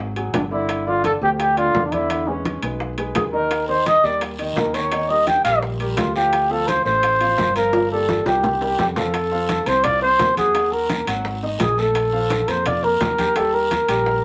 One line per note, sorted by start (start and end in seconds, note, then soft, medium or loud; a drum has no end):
0.00 0.30 G#1 medium
0.00 0.10 F#4 medium
0.00 0.10 G#4 medium
0.16 0.45 F#3 medium
0.16 0.45 F#4 medium
0.16 0.45 G#4 medium
0.16 high bongo soft
0.16 high conga soft
0.16 high timbale medium
0.33 1.16 G1 medium
0.33 0.42 D4 medium
0.33 high bongo medium
0.33 low bongo medium
0.33 high conga medium
0.33 high timbale medium
0.33 low timbale medium
0.51 0.80 D3 medium
0.51 0.81 D4 medium
0.51 0.89 E4 medium
0.51 0.81 D5 medium
0.51 high bongo soft
0.69 high bongo medium
0.69 high conga soft
0.69 high timbale medium
0.87 1.16 D3 medium
0.87 1.16 D4 medium
0.87 1.04 F4 medium
0.87 1.16 D5 medium
0.87 high conga soft
1.04 1.13 A4 medium
1.04 high bongo medium
1.04 high conga medium
1.04 high timbale medium
1.04 low timbale medium
1.21 1.71 D2 medium
1.21 1.51 F3 medium
1.21 1.51 F4 medium
1.21 1.51 G4 medium
1.21 1.31 G4 medium
1.21 high conga soft
1.39 1.59 G4 medium
1.39 high bongo medium
1.39 high conga soft
1.39 high timbale medium
1.57 1.86 D3 medium
1.57 1.86 D4 medium
1.57 1.85 F4 loud
1.57 1.86 D5 medium
1.57 high conga soft
1.57 high timbale medium
1.74 2.57 E2 medium
1.74 high bongo medium
1.74 low bongo medium
1.74 high conga medium
1.74 low timbale medium
1.86 1.94 D4 medium
1.92 2.07 D3 medium
1.92 2.07 D4 medium
1.92 2.29 E4 medium
1.92 2.07 D5 medium
1.92 high conga medium
1.92 high timbale medium
2.10 2.25 D3 medium
2.10 2.25 D4 medium
2.10 2.25 D5 medium
2.10 high bongo medium
2.10 high conga soft
2.10 high timbale medium
2.28 2.57 G#3 medium
2.28 2.63 C#4 medium
2.28 2.57 G#4 medium
2.28 2.57 B4 medium
2.28 high bongo soft
2.28 high conga soft
2.45 high bongo soft
2.45 high conga medium
2.45 high timbale medium
2.45 low timbale medium
2.63 3.12 B1 medium
2.63 2.92 G#3 medium
2.63 2.92 G#4 medium
2.63 2.92 B4 medium
2.63 high conga soft
2.63 high timbale medium
2.80 high bongo medium
2.80 high conga soft
2.98 3.27 G#3 medium
2.98 3.27 G#4 medium
2.98 3.27 B4 medium
2.98 high bongo soft
2.98 high conga soft
2.98 high timbale medium
3.15 3.98 D#2 medium
3.15 3.23 G#4 medium
3.15 high bongo medium
3.15 low bongo medium
3.15 high conga medium
3.15 high timbale medium
3.15 low timbale medium
3.33 3.62 D#3 medium
3.33 3.62 D#4 medium
3.33 3.66 A#4 medium
3.33 3.62 D#5 medium
3.33 high bongo soft
3.51 high bongo medium
3.51 high conga soft
3.51 high timbale medium
3.51 long guiro medium
3.68 3.97 D#3 medium
3.68 3.98 D#4 medium
3.68 3.88 C5 medium
3.68 3.98 D#5 medium
3.68 high conga soft
3.86 4.06 D#5 loud
3.86 high bongo medium
3.86 high conga medium
3.86 high timbale medium
3.86 low timbale medium
3.86 short guiro medium
4.03 4.53 D#2 medium
4.03 4.33 G3 medium
4.03 4.33 G4 medium
4.03 4.33 A#4 medium
4.03 4.22 D5 medium
4.03 high conga soft
4.03 short guiro medium
4.21 high bongo medium
4.21 high conga soft
4.21 high timbale medium
4.21 long guiro medium
4.39 4.68 D#3 medium
4.39 4.68 D#4 medium
4.39 4.68 D#5 medium
4.39 high conga soft
4.39 high timbale medium
4.56 5.39 D#2 medium
4.56 4.76 A#4 medium
4.56 high bongo medium
4.56 low bongo medium
4.56 high conga medium
4.56 low timbale medium
4.56 short guiro medium
4.74 4.89 D#3 medium
4.74 4.89 D#4 medium
4.74 5.11 C#5 medium
4.74 4.89 D#5 medium
4.74 high timbale medium
4.74 short guiro medium
4.92 5.07 D#3 medium
4.92 5.07 D#4 medium
4.92 5.07 D#5 medium
4.92 high bongo medium
4.92 high conga soft
4.92 high timbale medium
4.92 long guiro medium
5.09 5.39 G3 medium
5.09 5.39 G4 medium
5.09 5.39 A#4 medium
5.09 5.29 D#5 medium
5.09 high bongo soft
5.09 high conga soft
5.27 5.44 G5 loud
5.27 high bongo medium
5.27 high conga medium
5.27 high timbale medium
5.27 low timbale medium
5.27 short guiro medium
5.44 5.94 A#1 medium
5.44 5.74 G3 medium
5.44 5.74 G4 medium
5.44 5.74 A#4 medium
5.44 5.61 F5 medium
5.44 high conga soft
5.44 high timbale medium
5.44 short guiro medium
5.62 high bongo medium
5.62 high conga soft
5.62 long guiro medium
5.80 6.09 G3 medium
5.80 6.09 G4 medium
5.80 6.09 A#4 medium
5.80 high bongo soft
5.80 high conga soft
5.80 high timbale medium
5.97 6.80 D2 medium
5.97 6.14 F4 medium
5.97 high bongo medium
5.97 low bongo medium
5.97 high conga medium
5.97 high timbale medium
5.97 low timbale medium
5.97 short guiro medium
6.15 6.44 F3 medium
6.15 6.44 F4 medium
6.15 6.53 G4 medium
6.15 6.45 F5 medium
6.15 high bongo soft
6.15 short guiro medium
6.33 high bongo medium
6.33 high conga soft
6.33 high timbale medium
6.33 long guiro medium
6.50 6.79 F3 medium
6.50 6.80 F4 medium
6.50 6.69 A4 medium
6.50 6.80 F5 medium
6.50 high conga soft
6.67 6.85 C5 loud
6.67 high bongo medium
6.67 high conga medium
6.67 high timbale medium
6.67 low timbale medium
6.67 short guiro medium
6.85 7.35 A1 medium
6.85 7.15 A3 medium
6.85 7.15 A4 medium
6.85 7.52 C5 loud
6.85 7.15 C5 medium
6.85 high conga soft
6.85 short guiro medium
7.03 high bongo medium
7.03 high conga soft
7.03 high timbale medium
7.03 long guiro medium
7.20 7.49 F3 medium
7.20 7.50 F4 medium
7.20 7.50 F5 medium
7.20 high conga soft
7.20 high timbale medium
7.38 8.20 G1 medium
7.38 high bongo medium
7.38 low bongo medium
7.38 high conga medium
7.38 low timbale medium
7.38 short guiro medium
7.56 7.70 F3 medium
7.56 7.71 F4 medium
7.56 7.89 A#4 loud
7.56 7.71 F5 medium
7.56 high timbale medium
7.56 short guiro medium
7.73 7.88 F3 medium
7.73 7.88 F4 medium
7.73 7.89 F5 medium
7.73 high bongo medium
7.73 high conga soft
7.73 high timbale medium
7.73 long guiro medium
7.92 8.20 A#3 medium
7.92 8.20 G4 medium
7.92 8.24 A4 medium
7.92 8.21 D5 medium
7.92 high conga soft
8.09 high conga medium
8.09 high timbale medium
8.09 short guiro medium
8.26 8.75 C2 medium
8.26 8.55 G3 medium
8.26 8.55 G4 medium
8.26 8.76 G4 medium
8.26 8.56 A#4 medium
8.26 high bongo medium
8.26 high timbale medium
8.26 short guiro medium
8.43 low bongo medium
8.43 high conga soft
8.43 low timbale medium
8.43 long guiro medium
8.61 8.90 G3 medium
8.61 8.91 G4 medium
8.61 8.91 A#4 medium
8.61 high conga soft
8.61 low timbale medium
8.79 9.61 F2 medium
8.79 8.88 G4 medium
8.79 low bongo medium
8.79 high conga medium
8.79 low timbale medium
8.79 short guiro medium
8.96 9.11 F3 medium
8.96 9.11 F4 medium
8.96 9.69 A4 medium
8.96 9.11 F5 medium
8.96 low bongo medium
8.96 high conga medium
8.96 low timbale medium
8.96 short guiro medium
9.14 high bongo medium
9.14 high conga soft
9.14 high timbale medium
9.14 long guiro medium
9.31 9.60 F3 medium
9.31 9.60 F4 medium
9.31 9.61 F5 medium
9.31 high conga soft
9.49 high bongo medium
9.49 high conga medium
9.49 high timbale medium
9.49 low timbale medium
9.49 short guiro medium
9.66 10.16 C2 medium
9.66 9.81 C4 medium
9.66 9.86 C5 loud
9.66 9.81 C5 medium
9.66 9.82 C6 medium
9.66 high bongo soft
9.66 high conga soft
9.66 high timbale medium
9.66 short guiro medium
9.84 9.99 F4 medium
9.84 10.01 D5 loud
9.84 9.99 F5 medium
9.84 9.99 F6 medium
9.84 high bongo medium
9.84 high conga soft
9.84 low conga medium
9.84 high timbale medium
9.84 long guiro medium
10.02 10.31 C4 medium
10.02 10.35 C5 loud
10.02 10.31 C5 medium
10.02 10.31 C6 medium
10.02 high bongo soft
10.02 high conga soft
10.19 11.02 D#2 medium
10.19 high bongo medium
10.19 low bongo medium
10.19 high conga medium
10.19 high timbale medium
10.19 low timbale medium
10.19 short guiro medium
10.37 10.52 F#4 medium
10.37 10.74 G#4 medium
10.37 10.52 F#5 medium
10.37 10.52 F#6 medium
10.37 high bongo soft
10.37 high conga medium
10.37 high timbale medium
10.37 short guiro medium
10.55 10.83 F#3 medium
10.55 10.84 F#4 medium
10.55 10.84 F#5 medium
10.55 high bongo medium
10.55 high conga soft
10.55 high timbale medium
10.55 long guiro medium
10.72 11.07 A#4 medium
10.72 high bongo soft
10.72 high conga soft
10.89 11.05 A#3 medium
10.89 11.05 A#4 medium
10.89 11.05 A#5 medium
10.89 high bongo medium
10.89 high conga medium
10.89 high timbale medium
10.89 low timbale medium
10.89 short guiro medium
11.07 11.56 G#1 medium
11.07 11.36 F#3 medium
11.07 11.36 F#4 medium
11.07 11.37 F#5 medium
11.07 high bongo soft
11.07 high conga soft
11.07 high timbale medium
11.07 short guiro medium
11.25 high bongo medium
11.25 high conga soft
11.25 long guiro medium
11.43 11.72 D#4 medium
11.43 11.72 D#5 medium
11.43 11.72 D#6 medium
11.43 high conga soft
11.60 12.42 A#1 medium
11.60 11.80 G#4 medium
11.60 high bongo medium
11.60 low bongo medium
11.60 high conga medium
11.60 high timbale medium
11.60 low timbale medium
11.60 short guiro medium
11.78 12.07 A3 medium
11.78 12.07 A4 medium
11.78 12.50 A4 medium
11.78 12.07 A5 medium
11.78 high bongo soft
11.78 short guiro medium
11.95 high bongo medium
11.95 high conga soft
11.95 high timbale medium
11.95 long guiro medium
12.13 12.42 F3 medium
12.13 12.42 F4 medium
12.13 12.42 F5 medium
12.13 high conga soft
12.30 high bongo medium
12.30 high conga medium
12.30 high timbale medium
12.30 low timbale medium
12.30 short guiro medium
12.48 12.97 F2 medium
12.48 12.62 A#3 medium
12.48 12.62 A#4 medium
12.48 12.66 C5 medium
12.48 12.63 A#5 medium
12.48 high bongo soft
12.48 high conga soft
12.48 high timbale medium
12.48 short guiro medium
12.66 12.80 F4 medium
12.66 12.85 D5 medium
12.66 12.80 F5 medium
12.66 12.81 F6 medium
12.66 high bongo medium
12.66 high conga soft
12.66 low conga medium
12.66 high timbale medium
12.66 long guiro medium
12.83 13.12 A#3 medium
12.83 13.12 A#4 medium
12.83 13.38 A#4 loud
12.83 13.12 A#5 medium
12.83 high bongo soft
12.83 high conga soft
13.01 13.83 D#2 medium
13.01 high bongo medium
13.01 low bongo medium
13.01 high conga medium
13.01 high timbale medium
13.01 low timbale medium
13.01 short guiro medium
13.18 13.33 G4 medium
13.18 13.33 G5 medium
13.18 13.33 G6 medium
13.18 high bongo soft
13.18 high conga medium
13.18 high timbale medium
13.18 short guiro medium
13.36 13.65 G3 medium
13.36 13.65 G4 medium
13.36 13.55 A4 medium
13.36 13.65 G5 medium
13.36 high bongo medium
13.36 high conga soft
13.36 high timbale medium
13.36 long guiro medium
13.54 14.24 A#4 medium
13.54 high bongo soft
13.54 high conga soft
13.71 13.86 A#3 medium
13.71 13.86 A#4 medium
13.71 13.86 A#5 medium
13.71 high bongo medium
13.71 high conga medium
13.71 high timbale medium
13.71 low timbale medium
13.71 short guiro medium
13.89 14.24 A#1 medium
13.89 14.18 G3 medium
13.89 14.18 G4 medium
13.89 14.18 G5 medium
13.89 high bongo soft
13.89 high conga soft
13.89 high timbale loud
13.89 short guiro medium
14.06 high bongo medium
14.06 high conga soft
14.06 long guiro medium